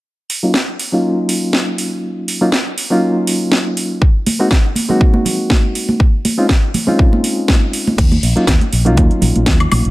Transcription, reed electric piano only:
X:1
M:4/4
L:1/16
Q:"Swing 16ths" 1/4=121
K:Ebdor
V:1 name="Reed electric piano"
z3 [G,B,DEF] z3 [G,B,DEF]8- [G,B,DEF]- | [G,B,DEF]3 [G,B,DEF] z3 [G,B,DEF]8- [G,B,DEF] | z3 [A,B,CEG] z3 [A,B,CEG]8- [A,B,CEG] | z3 [A,CDEF] z3 [A,CDEF]8- [A,CDEF] |
z3 [G,B,DEF] z3 [G,B,DEF]8- [G,B,DEF] |]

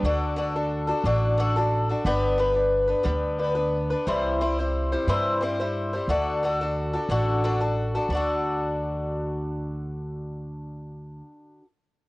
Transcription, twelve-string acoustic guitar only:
X:1
M:6/8
L:1/16
Q:3/8=60
K:Dmix
V:1 name="Twelve-string acoustic guitar"
[D,DFA]2 [D,DFA] [DFA]2 [DFA] [D,DFA]2 [D,DFA] [DFA]2 [DFA] | [G,B,DB]2 [G,B,DB] [B,DB]2 [B,DB] [G,B,DB]2 [G,B,DB] [B,DB]2 [B,DB] | [C,E,G,CEc]2 [G,CEc] [G,CEc]2 [G,CEc] [C,E,G,CEc]2 [G,CEc] [G,CEc]2 [G,CEc] | [D,DFA]2 [D,DFA] [DFA]2 [DFA] [D,DFA]2 [D,DFA] [DFA]2 [DFA] |
[D,DFA]12- | [D,DFA]12 |]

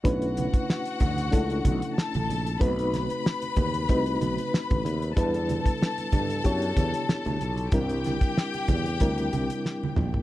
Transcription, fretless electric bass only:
X:1
M:4/4
L:1/16
Q:"Swing 16ths" 1/4=94
K:Bm
V:1 name="Fretless electric bass" clef=bass
B,,,3 z3 D,,2 C,,2 B,,, z2 A,,, ^A,,,2 | B,,,3 z3 ^D,,2 =C,,2 B,,, z2 A,,, D,,2 | E,,3 z3 G,,2 F,,2 E,, z2 D,, B,,,2 | =C,,3 z3 E,,2 D,,2 C,, z3 _B,,,2 |]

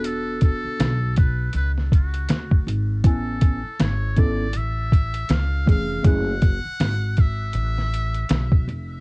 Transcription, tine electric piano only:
X:1
M:4/4
L:1/8
Q:"Swing 16ths" 1/4=80
K:A
V:1 name="Tine electric piano"
[B,DFA]2 z6 | [B,CEg] z2 [B,CEA] z3 [E,A,CG] | [A,CEG] z6 z |]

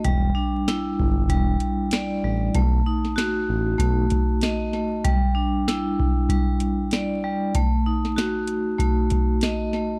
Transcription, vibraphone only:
X:1
M:4/4
L:1/8
Q:"Swing 16ths" 1/4=96
K:Em
V:1 name="Vibraphone"
G, D E2 G,2 d G, | A, ^D F2 A,2 ^d A, | G, D E2 G,2 d G, | A, ^D F2 A,2 ^d A, |]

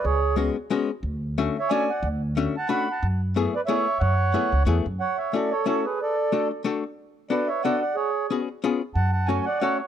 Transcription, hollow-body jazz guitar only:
X:1
M:3/4
L:1/8
Q:"Swing" 1/4=182
K:F#m
V:1 name="Hollow-body jazz guitar"
z2 [G,B,CF] z [G,B,CF] z | z2 [A,CDF] z [A,CDF] z | z2 [A,CDF] z [A,CDF] z | z2 [A,B,EG] z [A,B,EG] z |
z2 [A,B,EG] z [A,B,EG] z | z2 [A,CEF] z [A,CEF] z | z2 [A,DFA] z [A,DFA] z | z2 [B,DFA] z [B,DFA] z |
z2 [B,CFG] z [B,C^EG] z | z2 [A,CFA] z [A,CFA] z |]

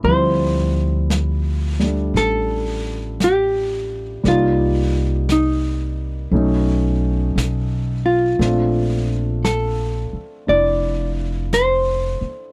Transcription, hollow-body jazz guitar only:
X:1
M:4/4
L:1/8
Q:"Swing" 1/4=58
K:Dm
V:1 name="Hollow-body jazz guitar"
c3 z A2 G2 | F2 _E4 z F- | F2 A2 d2 c2 |]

